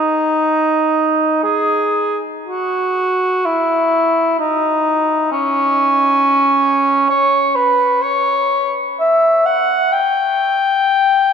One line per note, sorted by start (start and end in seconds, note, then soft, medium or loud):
0.00 1.42 D#4 medium
1.43 2.18 G#4 medium
2.47 3.47 F#4 medium
3.45 4.37 E4 medium
4.39 5.30 D#4 medium
5.32 7.07 C#4 medium
7.09 7.57 C#5 medium
7.55 8.03 B4 medium
8.02 8.73 C#5 medium
9.00 9.47 E5 medium
9.46 9.94 F#5 medium
9.92 11.33 G5 medium